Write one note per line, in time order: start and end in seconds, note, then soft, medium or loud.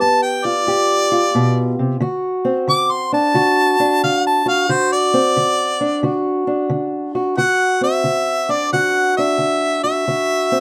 0.00 0.63 G2 medium
0.00 2.00 B3 medium
0.00 0.67 G4 medium
0.00 0.22 A5 loud
0.22 0.47 G5 medium
0.45 1.10 F4 medium
0.45 1.75 D5 loud
0.67 1.29 G2 medium
0.67 1.99 G4 medium
1.12 1.99 F4 medium
1.35 1.78 B2 medium
1.79 2.00 C3 medium
2.00 2.63 D3 medium
2.00 3.35 F#4 medium
2.45 4.72 C4 medium
2.67 3.30 D3 medium
2.67 2.93 D6 loud
2.91 3.13 C6 medium
3.12 3.79 D4 medium
3.12 4.00 A5 loud
3.34 3.97 D3 medium
3.34 4.45 F#4 medium
3.80 5.17 D4 medium
4.04 4.66 D3 medium
4.04 4.25 F5 loud
4.27 4.48 A5 medium
4.46 4.69 F#4 medium
4.46 4.73 F5 medium
4.69 5.32 D3 medium
4.69 6.02 F#4 medium
4.69 4.92 C5 loud
4.92 6.23 D5 loud
5.14 7.36 C4 medium
5.37 5.99 D3 medium
5.81 6.46 D4 medium
6.03 6.66 D3 medium
6.03 7.14 F#4 medium
6.47 7.35 D4 medium
6.70 7.33 D3 medium
7.15 7.37 F#4 medium
7.37 8.01 D3 medium
7.37 8.73 F#4 medium
7.37 7.79 F#5 loud
7.81 10.11 C4 medium
7.81 8.52 E5 loud
8.04 8.67 D3 medium
8.49 9.18 D4 medium
8.49 8.72 D5 medium
8.73 9.36 D3 medium
8.73 9.84 F#4 medium
8.73 9.14 F#5 loud
9.17 10.55 D4 medium
9.17 9.80 E5 medium
9.38 10.02 D3 medium
9.83 10.07 F#4 medium
9.83 10.60 E5 medium
10.08 10.60 D3 medium
10.08 10.60 F#4 medium
10.52 10.60 C4 medium